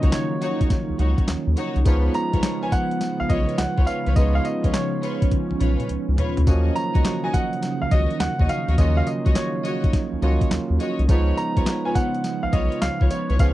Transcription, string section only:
0.03 D#4 F#4 C#5
0.41 D#4 F#4 C#5
0.99 D#4 F#4 C#5
1.57 D#4 F#4 C#5
1.85 F4 B4 C#5
2.33 F4 B4 C#5
2.62 F4 B4 C#5
3.29 F4 B4 C#5
3.77 F4 B4 C#5
4.06 F4 B4 C#5
4.16 F4 B4 C#5
4.64 F4 B4 C#5
5.02 F4 B4 C#5
5.60 F4 B4 C#5
6.18 F4 B4 C#5
6.47 F#4 C#5 D#5
6.95 F#4 C#5 D#5
7.24 F#4 C#5 D#5
7.91 F#4 C#5 D#5
8.39 F#4 C#5 D#5
8.68 F#4 C#5 D#5
8.78 F#4 C#5 D#5
9.26 F#4 C#5 D#5
9.64 F#4 C#5 D#5
10.22 F#4 C#5 D#5
10.80 F#4 C#5 D#5
11.09 F4 B4 C#5
11.56 F4 B4 C#5
11.85 F4 B4 C#5
12.53 F4 B4 C#5
13.00 F4 B4 C#5
13.30 F4 B4 C#5
13.39 F4 B4 C#5

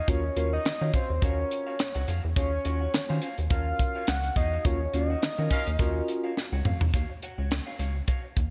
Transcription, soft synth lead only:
Already playing: D#5
0.09 C#5
0.53 D#5
0.95 C5
1.23 C#5
2.36 C#5
3.51 F5
4.07 F#5
4.37 D#5
4.66 C#5
4.94 D#5

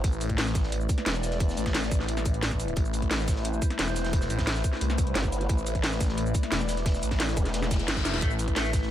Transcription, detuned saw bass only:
0.04 A1
1.06 E1
1.57 A1
1.91 A1
2.43 A1
2.77 A1
3.79 E1
4.30 A1
4.81 C2
5.49 A1
6.52 E1
7.03 A1
7.88 G1
8.22 A1

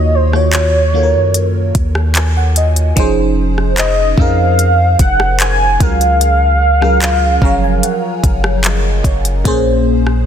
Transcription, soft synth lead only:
Already playing: D#5
0.15 C5
0.35 C#5
3.79 D#5
4.19 F5
5.00 F#5
5.41 G#5
5.81 F5

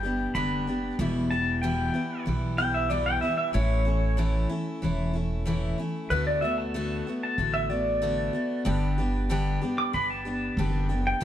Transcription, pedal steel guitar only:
Already playing: G5
0.35 B5
1.31 A5
1.62 G5
2.58 G5
2.74 E5
2.90 D5
3.06 G5
3.21 E5
3.37 E5
3.54 C#5
6.10 B4
6.27 D5
6.41 E5
6.58 A5
7.23 A5
7.54 E5
7.70 D5
9.78 D6
9.94 B5
10.10 A5
11.07 G5

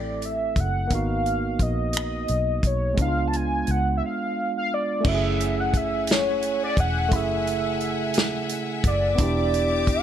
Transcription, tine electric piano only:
Already playing: A3 C4 E4 A4
0.87 A#3 B3
0.92 D#4 F#4
2.94 G#3 B3
2.99 D4 E4
3.08 F4
5.01 A3 C#4
5.05 E4 F#4
5.14 G#4
7.08 C#3 A3
7.14 E4 G#4
9.15 B3 D4
9.20 E4 G4

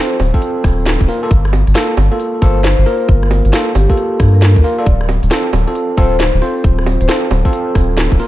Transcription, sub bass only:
0.20 D1
0.64 D1
1.01 D1
1.31 G1
1.67 G1
1.97 G1
2.42 G1
2.78 G1
3.09 G1
3.45 G1
3.75 G1
4.20 G2
4.56 D2
4.86 D1
5.23 D1
5.53 D1
5.98 D1
6.34 D1
6.64 D1
7.01 D1
7.31 D1
7.75 D1
8.12 D1

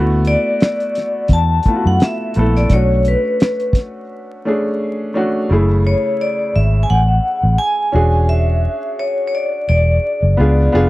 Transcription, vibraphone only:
0.28 D5
1.33 A5
1.87 F#5
2.04 E5
2.57 D5
2.73 C#5
3.08 B4
5.87 C#5
6.21 D5
6.56 E5
6.83 G#5
6.90 F#5
7.58 G#5
8.29 E5
8.99 C#5
9.28 C#5
9.35 D5
9.69 D5

